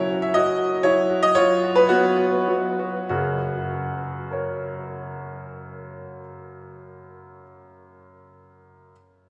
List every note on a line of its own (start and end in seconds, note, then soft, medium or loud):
0.00 0.33 F#3 medium
0.00 0.19 E4 medium
0.00 0.22 C#5 loud
0.10 0.34 F#4 medium
0.22 0.35 E5 loud
0.34 0.83 F#3 medium
0.34 0.57 F#4 medium
0.34 0.84 D#5 loud
0.58 1.08 F#4 medium
0.83 1.34 F#3 medium
0.83 1.20 E4 medium
0.83 1.22 C#5 loud
1.10 1.35 F#4 medium
1.23 1.36 D#5 loud
1.35 1.88 F#3 medium
1.35 1.73 F4 loud
1.35 1.75 C#5 loud
1.63 1.87 F#4 medium
1.76 1.89 B4 loud
1.89 2.47 F#3 medium
1.89 2.44 B3 medium
1.89 2.16 F#4 loud
2.18 2.78 F#4 medium
2.48 3.08 F#3 medium
2.79 3.08 F#4 medium
3.09 6.19 F#2 medium
3.09 6.19 C#3 medium
3.09 6.18 F#4 medium
4.31 7.40 A#4 medium
4.31 7.41 C#5 medium